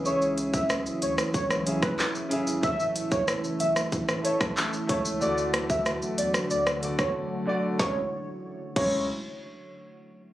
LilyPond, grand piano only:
\new Staff \with { instrumentName = "Grand piano" } { \time 4/4 \key cis \phrygian \tempo 4 = 93 <cis cis' gis' e''>4. r4 <cis cis' gis' e''>8 r8 <cis cis' gis' e''>8 | <a a' cis'' e''>4. r4 <a a' cis'' e''>8 r8 <a a' cis'' e''>8 | <d a fis' d''>4. r4 <d a fis' d''>8 r8 <d a fis' d''>8 | <cis gis e' cis''>8 r4 <cis gis e' cis''>8 r2 | }